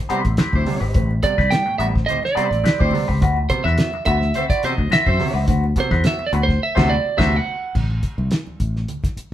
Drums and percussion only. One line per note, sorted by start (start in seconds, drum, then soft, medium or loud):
0.10 closed hi-hat medium
0.25 kick medium
0.25 closed hi-hat medium
0.37 snare loud
0.37 closed hi-hat medium
0.37 muted conga soft
0.37 high conga medium
0.53 kick loud
0.53 high conga medium
0.66 open hi-hat medium
0.66 low conga medium
0.94 kick loud
0.94 closed hi-hat loud
0.94 muted conga soft
0.94 low conga medium
1.11 muted conga soft
1.23 kick medium
1.23 closed hi-hat medium
1.38 kick medium
1.38 snare soft
1.38 high conga medium
1.51 snare loud
1.51 closed hi-hat medium
1.67 muted conga soft
1.80 closed hi-hat medium
1.96 kick loud
1.96 snare soft
2.09 closed hi-hat medium
2.09 muted conga soft
2.09 low conga medium
2.23 snare soft
2.23 muted conga soft
2.37 closed hi-hat medium
2.53 closed hi-hat soft
2.64 snare loud
2.64 closed hi-hat medium
2.64 high conga loud
2.79 kick loud
2.79 high conga medium
2.91 open hi-hat medium
2.91 low conga medium
3.09 kick medium
3.21 kick loud
3.21 closed hi-hat loud
3.21 low conga medium
3.36 muted conga soft
3.49 kick medium
3.49 closed hi-hat medium
3.64 snare soft
3.64 high conga medium
3.77 snare loud
3.77 closed hi-hat medium
3.77 muted conga soft
3.93 muted conga soft
4.05 kick loud
4.05 closed hi-hat medium
4.22 snare soft
4.34 closed hi-hat medium
4.34 muted conga soft
4.34 low conga medium
4.50 kick loud
4.50 snare soft
4.50 closed hi-hat medium
4.50 muted conga soft
4.63 closed hi-hat medium
4.78 kick medium
4.90 snare loud
4.90 closed hi-hat medium
4.90 high conga medium
5.06 kick loud
5.06 muted conga soft
5.06 high conga medium
5.19 open hi-hat medium
5.19 low conga medium
5.48 kick loud
5.48 closed hi-hat medium
5.48 low conga medium
5.64 muted conga soft
5.76 kick medium
5.76 closed hi-hat medium
5.91 kick medium
5.91 snare soft
5.91 high conga medium
6.04 snare loud
6.04 closed hi-hat medium
6.04 muted conga soft
6.19 muted conga soft
6.33 closed hi-hat medium
6.49 kick medium
6.49 snare soft
6.77 kick loud
6.77 snare loud
6.77 crash medium
7.19 kick loud
7.19 snare loud
7.19 crash medium
7.75 kick loud
7.75 crash medium
7.75 muted conga soft
7.75 low conga medium
7.90 muted conga soft
8.03 kick medium
8.03 closed hi-hat medium
8.18 high conga medium
8.31 snare loud
8.31 closed hi-hat medium
8.47 muted conga soft
8.47 high conga medium
8.60 kick medium
8.60 closed hi-hat medium
8.76 snare soft
8.88 closed hi-hat medium
8.88 muted conga soft
8.88 low conga medium
9.03 kick medium
9.03 snare soft
9.03 closed hi-hat medium
9.03 muted conga soft
9.17 closed hi-hat medium